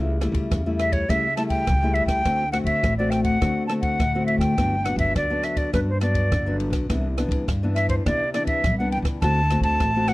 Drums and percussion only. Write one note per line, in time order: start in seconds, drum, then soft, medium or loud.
0.21 cross-stick medium
0.21 ride soft
0.34 kick medium
0.34 ride soft
0.51 kick medium
0.51 cross-stick medium
0.51 ride soft
0.79 cross-stick medium
0.79 ride soft
0.93 kick medium
0.93 ride soft
1.09 kick medium
1.09 cross-stick medium
1.09 ride soft
1.37 cross-stick medium
1.37 ride soft
1.50 kick medium
1.50 ride soft
1.67 kick medium
1.67 cross-stick medium
1.67 ride soft
1.95 ride soft
2.08 kick medium
2.08 cross-stick medium
2.08 ride soft
2.25 kick medium
2.25 cross-stick medium
2.25 ride soft
2.53 cross-stick medium
2.53 ride soft
2.66 kick medium
2.66 ride soft
2.83 kick medium
2.83 cross-stick medium
2.83 ride soft
3.12 cross-stick medium
3.12 ride soft
3.24 kick medium
3.24 ride soft
3.42 kick medium
3.42 cross-stick medium
3.42 ride soft
3.69 cross-stick medium
3.69 ride soft
3.83 kick medium
3.83 ride soft
4.00 kick medium
4.00 cross-stick medium
4.00 ride soft
4.28 ride soft
4.41 kick medium
4.41 cross-stick medium
4.41 ride soft
4.58 kick medium
4.58 cross-stick medium
4.58 ride soft
4.85 cross-stick medium
4.85 ride soft
4.99 kick medium
4.99 ride soft
5.16 kick medium
5.16 cross-stick medium
5.16 ride soft
5.43 cross-stick medium
5.43 ride soft
5.57 kick medium
5.57 ride soft
5.74 kick medium
5.74 cross-stick medium
5.74 ride soft
6.01 cross-stick medium
6.01 ride soft
6.15 kick medium
6.15 ride soft
6.32 kick medium
6.32 cross-stick medium
6.32 ride soft
6.60 ride soft
6.73 kick medium
6.73 cross-stick medium
6.73 ride soft
6.90 kick medium
6.90 cross-stick medium
6.90 ride soft
7.18 cross-stick medium
7.18 ride medium
7.31 kick medium
7.31 ride soft
7.48 kick medium
7.48 cross-stick medium
7.48 ride soft
7.76 cross-stick medium
7.76 ride soft
7.89 kick medium
7.89 ride soft
8.06 kick medium
8.06 cross-stick medium
8.06 ride soft
8.34 cross-stick medium
8.34 ride soft
8.47 kick medium
8.47 ride soft
8.64 kick medium
8.64 cross-stick medium
8.64 ride soft
8.92 ride soft
9.05 kick medium
9.05 cross-stick medium
9.05 ride soft
9.22 kick medium
9.22 cross-stick medium
9.22 ride soft
9.50 cross-stick medium
9.50 ride soft
9.63 kick medium
9.63 ride soft
9.80 kick medium
9.80 cross-stick medium
9.80 ride soft
10.08 cross-stick medium
10.08 ride soft